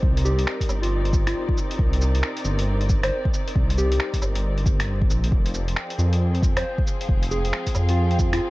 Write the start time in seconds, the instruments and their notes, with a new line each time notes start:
Already playing: string section C3 C4 D#4 A#4 D5
0.03 detuned saw bass C2, kick
0.17 closed hi-hat
0.25 soft synth lead G4, cabasa
0.39 closed hi-hat
0.47 finger snap
0.61 kick, closed hi-hat, cabasa
0.69 detuned saw bass G1, cabasa, low woodblock
0.82 soft synth lead F4, closed hi-hat
1.05 closed hi-hat
1.13 kick, cabasa
1.27 soft synth lead F4, finger snap, closed hi-hat
1.49 kick
1.58 cabasa
1.71 closed hi-hat
1.79 detuned saw bass C2, kick
1.93 closed hi-hat
2.01 cabasa
2.15 closed hi-hat
2.23 finger snap
2.37 closed hi-hat
2.44 detuned saw bass G1, cabasa
2.59 closed hi-hat
2.81 closed hi-hat
2.89 kick, cabasa
3.03 soft synth lead C5, finger snap, closed hi-hat, low woodblock
3.25 kick
3.34 cabasa
3.48 closed hi-hat
3.56 detuned saw bass C2, kick
3.70 closed hi-hat
3.78 soft synth lead G4, cabasa
3.92 closed hi-hat
4.00 finger snap
4.14 kick, closed hi-hat, cabasa
4.22 detuned saw bass G1, cabasa, low woodblock
4.35 closed hi-hat
4.58 closed hi-hat
4.66 detuned saw bass G1, kick, cabasa
4.80 finger snap, closed hi-hat
5.02 kick
5.10 detuned saw bass A#1, cabasa
5.24 closed hi-hat
5.32 detuned saw bass F1, string section F3, kick
5.46 closed hi-hat
5.54 cabasa
5.68 string section G#4, closed hi-hat
5.73 string section G5, finger snap
5.90 closed hi-hat
5.98 detuned saw bass F2, cabasa
6.13 closed hi-hat
6.35 closed hi-hat
6.43 string section F5, kick, cabasa
6.57 soft synth lead C5, finger snap, closed hi-hat, low woodblock
6.78 kick
6.87 cabasa
7.01 closed hi-hat
7.09 detuned saw bass F1, kick
7.23 closed hi-hat
7.31 soft synth lead G#4, cabasa
7.45 closed hi-hat
7.53 finger snap
7.67 kick, closed hi-hat, cabasa
7.75 detuned saw bass F2, cabasa, low woodblock
7.89 soft synth lead F4, closed hi-hat
8.11 closed hi-hat
8.19 kick, cabasa
8.33 soft synth lead F4, finger snap, closed hi-hat